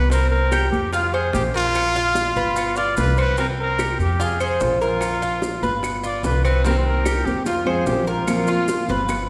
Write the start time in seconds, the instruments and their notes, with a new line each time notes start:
Already playing: upright bass C2, nylon-string guitar G3 B3 F4, trumpet B4
0.10 cuban tres C4, trumpet A#4, high bongo, maracas
0.30 trumpet A#4
0.52 cuban tres G4, high bongo, claves, maracas
0.71 upright bass F2, trumpet G4, maracas
0.93 cuban tres F4, trumpet F4, high bongo, maracas
1.14 trumpet G#4, cuban tres C5, claves
1.33 upright bass A#1, trumpet G4, high bongo, low bongo, maracas
1.54 trumpet F4, cuban tres A#4, maracas
1.75 high bongo, claves, maracas
1.95 cuban tres F4, high bongo, maracas
2.15 high bongo, maracas
2.36 upright bass G1, cuban tres B4, high bongo, maracas
2.56 high bongo, claves, maracas
2.76 cuban tres F4, trumpet D5, maracas
2.97 upright bass C2, trumpet B4, high bongo, low bongo, maracas
3.17 cuban tres C4, trumpet B4, high bongo, claves, maracas
3.37 cuban tres C4, trumpet A#4, high bongo, maracas
3.60 trumpet A#4
3.79 cuban tres G4, high bongo, claves, maracas
3.99 upright bass F2, trumpet G4, maracas
4.20 cuban tres F4, trumpet G#4, high bongo, maracas
4.40 trumpet G#4, cuban tres C5, claves, maracas
4.60 upright bass A#1, trumpet F4, high bongo, low bongo, maracas
4.81 trumpet F4, cuban tres A#4, maracas
5.01 high bongo, claves, maracas
5.22 cuban tres F4, high bongo, maracas
5.42 high bongo, maracas
5.62 upright bass G1, cuban tres B4, high bongo, maracas
5.83 high bongo, claves, maracas
6.03 cuban tres F4, trumpet D5, maracas
6.23 upright bass C2, trumpet B4, high bongo, low bongo, maracas
6.44 cuban tres C4, trumpet B4, high bongo, claves, maracas
6.65 nylon-string guitar C3 D#3 A#3 C4 G4, cuban tres C4, trumpet A#4, high bongo, maracas
6.78 trumpet C5
6.86 trumpet A#4
7.05 cuban tres G4, high bongo, claves, maracas
7.25 upright bass F2, nylon-string guitar D#3 A#3 C4 G4, trumpet G4, maracas
7.45 trumpet F4, cuban tres F4, muted nylon-string guitar stroke, high bongo, maracas
7.65 nylon-string guitar F3 G#3 C4 F4, trumpet G#4, cuban tres C5, claves
7.86 upright bass A#1, nylon-string guitar F3 G#3 C4 F4, trumpet G4, high bongo, low bongo, maracas
8.07 trumpet F4, cuban tres A#4, maracas
8.27 nylon-string guitar F3 A#3 C4 F4, high bongo, claves, maracas
8.47 cuban tres F4, high bongo, maracas
8.68 high bongo, maracas
8.88 upright bass G1, nylon-string guitar A#3 C4 F4, cuban tres B4, high bongo, maracas
9.09 muted nylon-string guitar stroke, high bongo, claves, maracas